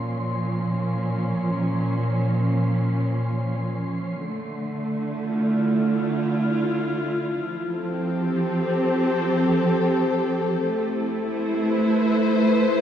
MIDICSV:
0, 0, Header, 1, 3, 480
1, 0, Start_track
1, 0, Tempo, 500000
1, 12298, End_track
2, 0, Start_track
2, 0, Title_t, "Synth texture"
2, 0, Program_c, 0, 99
2, 0, Note_on_c, 0, 84, 68
2, 4054, Note_off_c, 0, 84, 0
2, 12298, End_track
3, 0, Start_track
3, 0, Title_t, "String section"
3, 0, Program_c, 1, 48
3, 0, Note_on_c, 1, 46, 77
3, 0, Note_on_c, 1, 53, 70
3, 0, Note_on_c, 1, 61, 66
3, 0, Note_on_c, 1, 65, 54
3, 354, Note_off_c, 1, 65, 0
3, 4038, Note_off_c, 1, 46, 0
3, 4042, Note_off_c, 1, 53, 0
3, 4043, Note_on_c, 1, 50, 73
3, 4054, Note_off_c, 1, 61, 0
3, 4102, Note_on_c, 1, 57, 72
3, 4760, Note_on_c, 1, 64, 62
3, 5027, Note_on_c, 1, 65, 82
3, 7113, Note_on_c, 1, 53, 76
3, 7118, Note_off_c, 1, 50, 0
3, 7120, Note_off_c, 1, 57, 0
3, 7380, Note_on_c, 1, 69, 74
3, 7443, Note_on_c, 1, 60, 92
3, 7605, Note_on_c, 1, 67, 75
3, 8338, Note_off_c, 1, 65, 0
3, 8350, Note_off_c, 1, 64, 0
3, 10181, Note_on_c, 1, 57, 82
3, 10189, Note_off_c, 1, 53, 0
3, 10423, Note_on_c, 1, 64, 84
3, 10853, Note_on_c, 1, 72, 88
3, 10989, Note_on_c, 1, 71, 69
3, 11283, Note_off_c, 1, 60, 0
3, 11409, Note_off_c, 1, 67, 0
3, 11420, Note_off_c, 1, 69, 0
3, 12298, Note_off_c, 1, 57, 0
3, 12298, Note_off_c, 1, 64, 0
3, 12298, Note_off_c, 1, 71, 0
3, 12298, Note_off_c, 1, 72, 0
3, 12298, End_track
0, 0, End_of_file